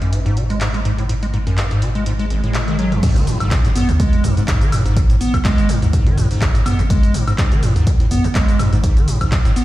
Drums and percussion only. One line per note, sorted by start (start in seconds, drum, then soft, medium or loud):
0.02 closed hi-hat soft
0.13 closed hi-hat medium
0.26 closed hi-hat soft
0.37 closed hi-hat medium
0.50 closed hi-hat soft
0.61 clap loud
0.61 closed hi-hat medium
0.74 closed hi-hat soft
0.85 closed hi-hat medium
0.98 closed hi-hat soft
1.09 closed hi-hat medium
1.23 closed hi-hat soft
1.34 closed hi-hat soft
1.47 closed hi-hat soft
1.58 clap loud
1.58 closed hi-hat medium
1.71 closed hi-hat soft
1.82 closed hi-hat medium
1.95 closed hi-hat soft
2.06 closed hi-hat medium
2.19 closed hi-hat soft
2.30 closed hi-hat medium
2.44 closed hi-hat soft
2.54 clap loud
2.54 closed hi-hat medium
2.68 closed hi-hat soft
2.79 closed hi-hat medium
2.92 closed hi-hat soft
3.03 kick loud
3.03 closed hi-hat loud
3.03 crash loud
3.03 shaker soft
3.16 closed hi-hat soft
3.16 shaker soft
3.27 open hi-hat loud
3.27 shaker medium
3.40 closed hi-hat soft
3.40 high woodblock medium
3.40 shaker soft
3.51 kick loud
3.51 clap loud
3.51 closed hi-hat loud
3.51 shaker soft
3.65 closed hi-hat soft
3.65 shaker soft
3.76 mid tom medium
3.76 open hi-hat loud
3.76 shaker medium
3.89 closed hi-hat soft
3.89 shaker soft
4.00 kick loud
4.00 closed hi-hat loud
4.00 shaker soft
4.13 closed hi-hat soft
4.24 mid tom medium
4.24 open hi-hat loud
4.24 shaker medium
4.37 closed hi-hat soft
4.37 shaker soft
4.48 kick loud
4.48 clap loud
4.48 closed hi-hat loud
4.48 shaker soft
4.61 closed hi-hat soft
4.61 shaker soft
4.72 mid tom medium
4.72 open hi-hat loud
4.72 high woodblock medium
4.72 shaker medium
4.86 closed hi-hat soft
4.86 shaker soft
4.97 kick loud
4.97 closed hi-hat medium
4.97 shaker soft
5.10 closed hi-hat soft
5.10 shaker soft
5.21 open hi-hat loud
5.21 shaker medium
5.34 kick medium
5.34 closed hi-hat soft
5.34 high woodblock medium
5.34 shaker soft
5.45 kick loud
5.45 clap loud
5.45 closed hi-hat loud
5.45 shaker soft
5.58 closed hi-hat soft
5.58 shaker soft
5.69 open hi-hat loud
5.69 shaker medium
5.82 closed hi-hat soft
5.82 shaker soft
5.93 kick loud
5.93 closed hi-hat medium
5.93 shaker soft
6.07 closed hi-hat soft
6.07 mid tom medium
6.18 mid tom medium
6.18 open hi-hat loud
6.18 shaker medium
6.31 open hi-hat medium
6.31 shaker soft
6.42 kick loud
6.42 clap loud
6.42 closed hi-hat medium
6.42 shaker soft
6.55 closed hi-hat soft
6.55 shaker soft
6.66 mid tom medium
6.66 open hi-hat loud
6.66 high woodblock medium
6.66 shaker medium
6.79 closed hi-hat soft
6.79 shaker soft
6.90 kick loud
6.90 closed hi-hat medium
6.90 shaker soft
7.03 closed hi-hat soft
7.03 shaker soft
7.14 open hi-hat loud
7.14 shaker medium
7.28 closed hi-hat soft
7.28 high woodblock medium
7.28 shaker soft
7.38 kick loud
7.38 clap loud
7.38 closed hi-hat medium
7.38 shaker soft
7.52 closed hi-hat soft
7.52 shaker soft
7.63 mid tom medium
7.63 open hi-hat loud
7.63 shaker medium
7.76 closed hi-hat soft
7.76 shaker soft
7.87 kick loud
7.87 closed hi-hat medium
7.87 shaker soft
8.00 closed hi-hat soft
8.11 mid tom medium
8.11 open hi-hat loud
8.11 shaker medium
8.24 closed hi-hat soft
8.24 shaker soft
8.35 kick loud
8.35 clap loud
8.35 closed hi-hat medium
8.35 shaker soft
8.48 closed hi-hat soft
8.48 shaker soft
8.59 mid tom loud
8.59 open hi-hat loud
8.59 high woodblock medium
8.59 shaker medium
8.73 closed hi-hat soft
8.73 shaker soft
8.84 kick loud
8.84 closed hi-hat medium
8.84 shaker soft
8.97 closed hi-hat soft
8.97 shaker soft
9.08 open hi-hat loud
9.08 shaker medium
9.21 kick medium
9.21 closed hi-hat soft
9.21 high woodblock medium
9.21 shaker soft
9.32 kick loud
9.32 clap loud
9.32 closed hi-hat medium
9.32 shaker soft
9.45 closed hi-hat soft
9.45 shaker soft
9.56 open hi-hat loud
9.56 shaker medium